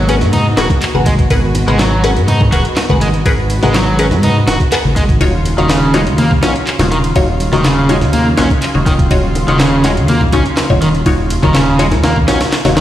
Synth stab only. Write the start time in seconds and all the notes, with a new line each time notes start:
0.09 G#4 A#4 B4 F#5
0.57 G#4 A#4 B4 F#5
0.95 G#4 A#4 B4 F#5
1.30 G#4 A#4 B4 F#5
1.68 G#4 A#4 B4 F#5
2.04 G#4 A#4 B4 F#5
2.53 G#4 A#4 B4 F#5
2.90 G#4 A#4 B4 F#5
3.26 G#4 A#4 B4 F#5
3.63 G#4 A#4 B4 F#5
3.99 G#4 A#4 B4 F#5
4.72 G#4 A#4 B4 F#5
5.21 D#4 F4 F#4 C#5
5.58 D#4 F4 F#4 C#5
5.94 D#4 F4 F#4 C#5
6.43 D#4 F4 F#4 C#5
6.80 D#4 F4 F#4 C#5
7.16 D#4 F4 F#4 C#5
7.53 D#4 F4 F#4 C#5
7.89 D#4 F4 F#4 C#5
8.38 D#4 F4 F#4 C#5
8.75 D#4 F4 F#4 C#5
9.11 D#4 F4 F#4 C#5
9.48 D#4 F4 F#4 C#5
9.84 D#4 F4 F#4 C#5
10.33 D#4 F4 F#4 C#5
10.70 D#4 F4 F#4 C#5
11.06 D#4 F4 F#4 C#5
11.43 D#4 F4 F#4 C#5
11.79 D#4 F4 F#4 C#5
12.28 D#4 F4 F#4 C#5
12.65 D#4 F4 F#4 C#5